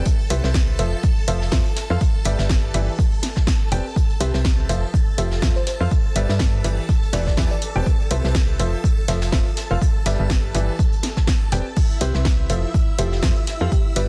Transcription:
Already playing: A4 A5
0.05 kick, closed hi-hat
0.19 closed hi-hat
0.30 C2 C4 G4 B4 C5 E5, closed hi-hat, open hi-hat
0.44 C2 C4 G4 B4 C5 E5, snare
0.54 kick, snare, closed hi-hat
0.79 F1 F3 F4 A4 C5 E5, closed hi-hat, open hi-hat
1.03 kick, closed hi-hat
1.28 F1 F3 F4 A4 C5 E5, closed hi-hat, open hi-hat
1.42 snare
1.52 F2 F3 F4 A4 C5 E5, kick, snare, closed hi-hat
1.65 closed hi-hat
1.76 snare, closed hi-hat, open hi-hat
1.90 F2 F4 A4 C5 F5
2.01 kick, closed hi-hat
2.24 G1 G3 G4 B4 D5 E5, closed hi-hat, open hi-hat
2.39 G1 G3 G4 B4 D5 E5, snare
2.49 kick, snare, closed hi-hat
2.74 G1 E3 G4 B4 D5 E5, closed hi-hat, open hi-hat
2.99 kick, closed hi-hat
3.11 closed hi-hat
3.23 snare, closed hi-hat, open hi-hat
3.36 kick, snare
3.47 kick, snare, closed hi-hat
3.72 E1 C4 G4 B4 D5 G5, closed hi-hat, open hi-hat
3.96 A4 A5, kick, closed hi-hat
4.10 closed hi-hat
4.20 C2 C4 G4 B4 C5 E5, closed hi-hat, open hi-hat
4.34 C2 C4 G4 B4 C5 E5, snare
4.45 kick, snare, closed hi-hat
4.69 F1 F3 F4 A4 C5 E5, closed hi-hat, open hi-hat
4.94 kick, closed hi-hat
5.18 F1 F3 F4 G4 A4 C5 E5, closed hi-hat, open hi-hat
5.31 G4, snare
5.42 F2 F3 F4 A4 C5 E5, kick, snare, closed hi-hat
5.56 C5, closed hi-hat
5.67 C5, snare, closed hi-hat, open hi-hat
5.80 F2 F4 A4 C5 F5
5.91 kick, closed hi-hat
6.16 G1 G3 G4 B4 D5 E5, closed hi-hat, open hi-hat
6.29 G2 G3 G4 B4 D5 E5, snare
6.39 kick, snare, closed hi-hat
6.64 G1 E3 G4 B4 D5 E5, closed hi-hat, open hi-hat
6.89 kick, closed hi-hat
7.03 closed hi-hat
7.13 E1 E3 G4 B4 D5 E5, snare, closed hi-hat, open hi-hat
7.27 D5, kick, snare
7.37 E2 E3 G4 B4 D5 E5, kick, snare, closed hi-hat
7.51 D5
7.62 closed hi-hat, open hi-hat
7.76 E1 C4 G4 B4 D5 G5
7.86 kick, closed hi-hat
8.00 closed hi-hat
8.11 C2 C4 G4 B4 C5 E5, closed hi-hat, open hi-hat
8.24 C2 C4 G4 B4 C5 E5, snare
8.34 kick, snare, closed hi-hat
8.60 F1 F3 F4 A4 C5 E5, closed hi-hat, open hi-hat
8.84 kick, closed hi-hat
9.08 F1 F3 F4 A4 C5 E5, snare, closed hi-hat, open hi-hat
9.22 snare, closed hi-hat
9.32 F1 F3 F4 A4 C5 E5, kick, snare, closed hi-hat
9.47 closed hi-hat
9.57 snare, closed hi-hat, open hi-hat
9.71 F1 F4 A4 C5 F5
9.82 kick, closed hi-hat
10.06 G1 G3 G4 B4 D5 E5, snare, closed hi-hat, open hi-hat
10.19 G1 G3 G4 B4 D5 E5
10.30 kick, snare, closed hi-hat
10.55 G1 E3 G4 B4 D5 E5, closed hi-hat, open hi-hat
10.79 kick, closed hi-hat
10.92 closed hi-hat
11.03 snare, closed hi-hat, open hi-hat
11.17 kick, snare
11.27 kick, snare, closed hi-hat
11.52 E1 C4 G4 B4 D5 G5, snare, closed hi-hat, open hi-hat
11.77 E4 E5, kick, closed hi-hat, crash
11.90 closed hi-hat
12.01 C2 C4 G4 B4 C5 E5, closed hi-hat, open hi-hat
12.14 C2 C4 G4 B4 C5 E5, snare
12.25 kick, snare, closed hi-hat
12.49 F1 F3 F4 A4 C5 E5, closed hi-hat, open hi-hat
12.74 kick, closed hi-hat
12.98 F1 F3 F4 G4 A4 C5 E5, closed hi-hat, open hi-hat
13.12 G4, snare
13.23 F2 F3 F4 A4 C5 E5, kick, snare, closed hi-hat
13.36 closed hi-hat
13.47 snare, closed hi-hat, open hi-hat
13.61 F2 F4 G4 A4 C5 F5
13.72 G4, kick, closed hi-hat
13.96 G1 G3 G4 B4 D5 E5, closed hi-hat, open hi-hat

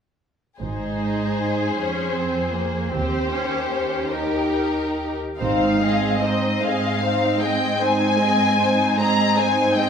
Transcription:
0.60 G#1 G#2 D#4 G#4 C5
1.76 F2 C#4
2.15 C4
2.53 A#3
2.92 D#2 C4 G4 C5
3.33 C#4
3.72 C#4
4.10 D#4 G4 A#4
5.39 G#1 G#2 C4 D#4 C5 F5
5.81 G#3 C4 G#4 D#5
6.22 C4 D#4 C5 D#5
6.61 G#2 G#3 C4 G#4 D#5 F5
7.01 C4 D#4 C5
7.40 G#3 C4 G#4 D#5 G5
7.80 G#2 C4 D#4 C5 G#5
8.19 G#3 C4 G#4 D#5
8.58 C4 D#4 C5
8.98 G#2 G#3 C4 G#4 D#5 A#5
9.37 C4 D#4 C5 G#5
9.75 G#3 C4 G#4 D#5 G5

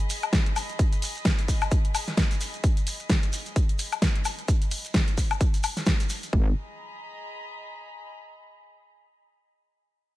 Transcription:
Already playing: G#4 D#5 B5
0.00 closed hi-hat
0.10 open hi-hat, shekere
0.22 closed hi-hat, high woodblock, shekere
0.33 kick, snare, closed hi-hat, shekere
0.46 closed hi-hat
0.56 open hi-hat, high woodblock, shekere
0.69 closed hi-hat, shekere
0.79 kick, closed hi-hat, shekere
0.93 closed hi-hat, shekere
1.02 open hi-hat, shekere
1.16 closed hi-hat, shekere
1.25 kick, snare, closed hi-hat, shekere
1.38 closed hi-hat, shekere
1.48 kick, open hi-hat, shekere
1.62 closed hi-hat, high woodblock, shekere
1.71 kick, closed hi-hat, shekere
1.85 closed hi-hat
1.95 open hi-hat, high woodblock, shekere
2.08 snare, closed hi-hat, shekere
2.17 kick, snare, closed hi-hat, shekere
2.31 closed hi-hat, shekere
2.41 open hi-hat, shekere
2.54 closed hi-hat, shekere
2.64 kick, closed hi-hat, shekere
2.77 closed hi-hat, shekere
2.87 open hi-hat, shekere
3.00 closed hi-hat, shekere
3.10 kick, snare, closed hi-hat, shekere
3.23 closed hi-hat, shekere
3.33 open hi-hat, shekere
3.46 closed hi-hat, shekere
3.56 kick, closed hi-hat, shekere
3.69 closed hi-hat
3.79 open hi-hat, shekere
3.92 closed hi-hat, high woodblock, shekere
4.02 kick, snare, closed hi-hat, shekere
4.16 closed hi-hat
4.25 open hi-hat, high woodblock, shekere
4.38 closed hi-hat, shekere
4.48 kick, closed hi-hat, shekere
4.62 closed hi-hat, shekere
4.71 open hi-hat, shekere
4.85 closed hi-hat, shekere
4.94 kick, snare, closed hi-hat, shekere
5.08 closed hi-hat, shekere
5.18 kick, open hi-hat, shekere
5.31 closed hi-hat, high woodblock, shekere
5.41 kick, closed hi-hat, shekere
5.54 closed hi-hat, shekere
5.63 open hi-hat, high woodblock, shekere
5.77 snare, closed hi-hat, shekere
5.86 kick, snare, closed hi-hat, shekere
6.00 closed hi-hat, shekere
6.10 open hi-hat, shekere
6.23 closed hi-hat, shekere
6.33 G#1 G#4, kick
6.41 D#5
6.48 A#5
6.54 B5

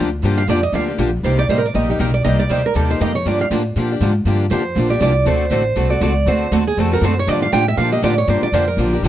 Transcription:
Already playing: D2
0.23 G2 D3 F3 A#3 D4 G4
0.38 F5
0.48 F2 D3 F3 A#3 D4 G4 D5
0.63 D#5
0.73 D2 D3 F3 A#3 D4 G4 F5
0.88 A#3 D4 G4
0.98 A#1 D3 F3 A#3 D4 G4
1.23 C2 C3 G3 A#3 D#4 G4 C5
1.39 D5
1.49 A1 C3 G3 A#3 D#4 G4 C5
1.58 A#4
1.66 D5
1.74 A#1 C3 G3 A#3 D#4 G4 D#5
1.89 A#3 D#4 G4
1.99 B1 C3 G3 A#3 D#4 G4 A#4
2.14 D5
2.24 C2 C3 G3 A#3 D#4 G4 D#5
2.39 D5
2.49 D2 C3 G3 A#3 D#4 G4 C5
2.66 A#4
2.75 D#2 C3 G3 A#3 D#4 G4 A4
2.89 A#3 D#4 G4 C5
3.00 F2 C3 G3 A#3 D#4 G4 D#5
3.15 C#5
3.26 G2 D3 F3 A#3 D4 G4 D5
3.41 F5
3.50 A2 D3 F3 A#3 D4 G4
3.76 A#2 D3 F3 A#3 D4 G4
3.91 A#3 D4 G4
4.01 G#2 D3 F3 A#3 D4 G4
4.25 G2 D3 F3 A#3 D4 G4
4.51 F2 D3 F3 A#3 D4 G4 C5
4.76 A#1 D3 F3 A#3 D4 G4
4.90 A#3 D4 G4 D5
5.01 C2 D3 F3 A#3 D4 G4 D5
5.25 D2 D3 A3 C4 F#4 A4 C5
5.51 A1 D3 A3 C4 F#4 A4 C5
5.76 C2 D3 A3 C4 F#4 A4
5.90 C4 F#4 A4 D5
6.01 C#2 D3 A3 C4 F#4 A4 D5
6.26 D2 D3 A3 C4 F#4 A4 C5
6.51 D#2 D3 A3 C4 F#4 A4
6.67 G#4
6.77 F2 D3 A3 C4 F#4 A4
6.92 C4 F#4 A4 A#4
7.01 F#2 D3 A3 C4 F#4 A4 C5
7.19 C#5
7.27 G2 D3 F3 A#3 D4 G4 D5
7.42 F5
7.52 A2 D3 F3 A#3 D4 G4 G5
7.68 E5
7.77 A#2 D3 F3 A#3 D4 G4 F5
7.92 A#3 D4 G4 D#5
8.02 A2 D3 F3 A#3 D4 G4 D5
8.18 C#5
8.28 G2 D3 F3 A#3 D4 G4 C5
8.42 D5, muted upright bass stroke
8.52 F2 D3 F3 A#3 D4 G4 C5
8.68 A#4
8.77 A#1 D3 F3 A#3 D4 G4
8.93 A#3 D4 G4
9.03 A1 D3 F3 A#3 D4 G4

